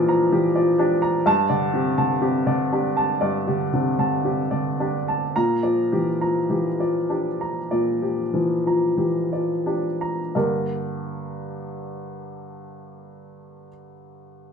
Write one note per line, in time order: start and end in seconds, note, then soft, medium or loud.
0.00 1.22 A#2 medium
0.00 0.32 E3 soft
0.00 0.09 F3 medium
0.00 0.79 D4 soft
0.00 0.33 G4 medium
0.00 0.56 D5 medium
0.00 0.09 A#5 medium
0.09 0.46 F3 soft
0.09 0.46 A#5 medium
0.32 0.55 E3 soft
0.32 0.70 G4 medium
0.56 0.93 F3 soft
0.56 0.93 D5 medium
0.78 1.17 D4 medium
0.78 1.16 G4 medium
1.02 1.26 A#5 medium
1.26 3.17 G2 medium
1.26 1.64 A5 medium
1.49 1.88 D3 soft
1.49 1.88 D5 medium
1.74 1.98 C3 soft
1.74 2.12 G4 soft
1.98 2.36 D3 soft
1.98 2.36 A5 medium
2.21 2.46 C3 soft
2.21 2.61 G4 medium
2.47 2.86 D3 soft
2.47 2.86 D5 medium
2.72 3.12 D4 soft
2.72 3.12 G4 soft
2.97 3.37 A5 soft
3.21 5.30 G2 soft
3.21 3.62 D5 medium
3.47 3.72 D3 soft
3.47 3.88 G4 soft
3.73 3.99 C3 soft
3.73 3.97 D3 soft
3.99 4.41 D3 soft
3.99 4.41 A5 soft
4.25 4.51 C3 soft
4.25 4.68 G4 soft
4.51 4.95 D3 soft
4.51 4.95 D5 soft
4.80 5.24 D4 soft
4.80 5.24 G4 soft
5.08 5.35 A5 soft
5.36 7.67 A#2 medium
5.36 5.80 A#5 medium
5.63 6.09 F3 soft
5.63 6.09 D5 soft
5.92 6.21 E3 soft
5.92 6.38 G4 soft
6.21 6.68 F3 soft
6.21 6.68 A#5 soft
6.50 6.79 E3 soft
6.50 6.97 G4 soft
6.80 7.27 F3 soft
6.80 7.28 D5 soft
7.10 7.58 D4 soft
7.10 7.58 G4 soft
7.41 7.90 A#5 soft
7.71 10.30 A#2 soft
7.71 8.21 D5 soft
8.02 8.32 F3 soft
8.02 8.53 G4 soft
8.34 8.65 E3 soft
8.34 8.65 F3 soft
8.67 9.18 F3 soft
8.67 9.18 A#5 soft
8.97 9.30 E3 soft
8.97 9.51 G4 soft
9.32 9.86 F3 soft
9.32 9.86 D5 soft
9.66 10.20 D4 soft
9.66 10.20 G4 soft
10.01 10.34 A#5 soft
10.35 13.67 G2 soft
10.35 13.68 D3 soft
10.35 13.68 A#3 soft
10.35 13.68 D4 soft
10.35 13.69 G4 soft
10.35 13.69 A#4 soft